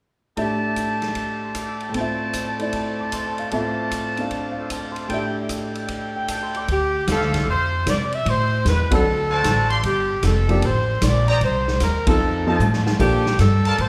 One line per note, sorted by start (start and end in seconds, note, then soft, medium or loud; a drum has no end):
0.37 1.88 A2 soft
0.37 1.91 A3 soft
0.37 1.95 D4 soft
0.37 1.95 G4 medium
0.37 1.95 G4 soft
0.37 1.94 D5 medium
0.37 1.95 E5 medium
0.37 1.95 E5 soft
0.37 1.94 A5 medium
0.37 kick soft
0.37 ride soft
0.76 kick soft
0.76 hi-hat pedal soft
0.76 ride soft
1.02 snare soft
1.02 ride soft
1.15 kick soft
1.15 ride soft
1.42 1.62 C6 soft
1.55 1.80 D6 soft
1.55 kick soft
1.55 hi-hat pedal medium
1.55 ride medium
1.68 1.89 E6 medium
1.80 2.02 G5 soft
1.80 ride soft
1.89 3.50 A2 soft
1.89 2.57 A3 soft
1.94 3.51 A3 medium
1.94 3.52 C4 soft
1.94 3.52 F4 soft
1.94 3.51 C5 medium
1.94 3.51 D5 medium
1.94 3.51 A5 medium
1.94 kick soft
1.94 ride soft
2.01 3.52 E5 soft
2.33 kick soft
2.33 hi-hat pedal soft
2.33 ride medium
2.59 3.51 A3 soft
2.59 3.52 E4 soft
2.59 3.53 D5 soft
2.59 ride soft
2.73 kick soft
2.73 ride soft
3.00 3.20 D6 soft
3.12 3.37 C6 soft
3.12 kick soft
3.12 hi-hat pedal soft
3.12 ride medium
3.26 3.46 A5 soft
3.38 3.59 F5 soft
3.38 ride soft
3.51 5.07 A2 soft
3.51 5.10 A3 medium
3.51 5.08 A3 soft
3.51 4.17 C4 soft
3.51 4.56 F4 medium
3.51 5.11 F4 soft
3.51 4.56 C5 medium
3.51 5.08 D5 medium
3.51 5.11 E5 soft
3.51 5.10 A5 medium
3.51 kick soft
3.51 ride soft
3.91 kick soft
3.91 hi-hat pedal soft
3.91 ride medium
4.17 5.10 C4 soft
4.17 5.09 D4 soft
4.17 5.11 A4 soft
4.17 4.50 F5 soft
4.17 ride soft
4.31 kick soft
4.31 ride soft
4.52 4.79 F5 soft
4.57 5.10 F4 medium
4.57 5.08 A4 medium
4.57 5.10 C5 medium
4.70 5.02 A5 soft
4.70 kick soft
4.70 hi-hat pedal medium
4.70 ride medium
4.92 5.19 C6 soft
4.96 ride soft
5.08 6.67 A2 soft
5.08 6.67 A3 soft
5.08 6.68 D4 soft
5.08 6.67 E4 medium
5.08 6.69 G4 soft
5.08 6.67 A4 medium
5.08 6.67 D5 medium
5.08 6.67 G5 medium
5.08 kick soft
5.08 ride soft
5.14 6.70 E5 soft
5.49 kick soft
5.49 hi-hat pedal medium
5.49 ride medium
5.75 ride soft
5.88 kick soft
5.88 ride soft
6.16 6.36 G5 soft
6.28 6.53 A5 soft
6.28 kick soft
6.28 hi-hat pedal medium
6.28 ride medium
6.43 6.62 C6 soft
6.55 6.76 D6 soft
6.55 ride soft
6.68 7.06 D2 medium
6.68 7.06 G4 medium
6.68 kick soft
6.68 ride soft
7.07 7.19 E2 medium
7.07 7.48 A4 medium
7.07 7.68 C5 medium
7.07 7.68 D5 medium
7.07 7.68 E5 medium
7.07 7.68 F5 medium
7.07 kick soft
7.07 snare medium
7.07 hi-hat pedal medium
7.07 ride medium
7.19 7.32 D2 soft
7.19 snare soft
7.33 7.45 C2 medium
7.33 snare soft
7.33 ride medium
7.47 7.85 F2 medium
7.47 7.85 C5 medium
7.47 kick soft
7.86 8.24 C3 medium
7.86 8.05 D5 medium
7.86 kick soft
7.86 snare medium
7.86 hi-hat pedal medium
7.86 ride medium
8.07 8.13 D5 medium
8.12 8.27 E5 medium
8.12 ride soft
8.26 8.64 A2 medium
8.26 8.66 C5 medium
8.26 kick soft
8.26 ride medium
8.65 9.03 E2 medium
8.65 8.91 B4 medium
8.65 kick soft
8.65 snare medium
8.65 hi-hat pedal soft
8.65 ride medium
8.91 9.03 F#3 medium
8.91 9.03 C4 soft
8.91 9.04 D4 medium
8.91 9.04 A4 medium
8.91 9.67 A4 medium
8.91 kick medium
8.91 ride medium
9.05 9.43 D2 medium
9.30 9.67 F#4 medium
9.30 9.67 C5 medium
9.30 9.67 D5 medium
9.30 9.67 A5 medium
9.44 9.82 A1 medium
9.44 kick soft
9.44 snare medium
9.44 hi-hat pedal medium
9.44 ride medium
9.70 9.79 G4 medium
9.70 9.79 D5 medium
9.70 9.79 F5 medium
9.70 9.79 C6 medium
9.70 ride soft
9.83 10.22 G1 medium
9.83 10.21 G4 medium
9.83 kick soft
9.83 ride medium
10.23 10.61 F1 medium
10.23 10.64 A4 medium
10.23 kick soft
10.23 snare medium
10.23 hi-hat pedal medium
10.23 ride medium
10.48 10.61 F3 medium
10.48 10.61 A#3 soft
10.48 10.61 D4 medium
10.48 10.62 G4 medium
10.48 ride soft
10.62 11.01 A1 medium
10.62 11.03 C5 medium
10.62 kick soft
10.62 ride medium
11.01 11.40 A#1 medium
11.01 11.29 D5 medium
11.01 kick soft
11.01 snare medium
11.01 hi-hat pedal medium
11.01 ride medium
11.28 11.37 G4 medium
11.28 11.37 C5 medium
11.28 11.41 D5 medium
11.28 11.37 D#5 medium
11.28 11.37 A#5 medium
11.28 ride soft
11.41 11.79 C2 medium
11.41 11.79 C5 medium
11.41 kick soft
11.41 ride medium
11.68 snare soft
11.80 12.19 D#2 medium
11.80 12.08 A#4 medium
11.80 kick soft
11.80 snare medium
11.80 hi-hat pedal medium
11.80 ride medium
12.06 12.44 F3 medium
12.06 12.44 C4 medium
12.06 12.44 D#4 medium
12.06 12.52 A4 medium
12.06 12.44 A4 medium
12.06 kick medium
12.06 ride medium
12.20 12.58 F2 medium
12.46 12.58 F3 medium
12.46 12.59 C4 medium
12.46 12.59 D#4 medium
12.46 12.97 F4 medium
12.46 12.59 A4 medium
12.46 12.97 C5 medium
12.46 12.96 D#5 medium
12.46 12.97 A5 medium
12.59 12.98 A2 medium
12.59 hi-hat pedal medium
12.59 high tom soft
12.73 snare soft
12.86 snare medium
12.99 13.37 A#2 medium
12.99 13.23 F3 medium
12.99 13.23 A#3 soft
12.99 13.23 D4 soft
12.99 13.36 G4 medium
12.99 13.24 A4 medium
12.99 kick medium
12.99 crash medium
13.26 snare medium
13.39 13.77 G2 medium
13.39 13.79 A4 medium
13.39 kick soft
13.39 snare medium
13.39 hi-hat pedal soft
13.39 ride medium
13.65 13.74 F4 medium
13.65 13.74 A#4 medium
13.65 13.74 D5 medium
13.65 13.74 A5 medium
13.65 ride soft
13.78 13.89 A2 medium
13.78 13.89 C5 medium
13.78 kick soft
13.78 ride medium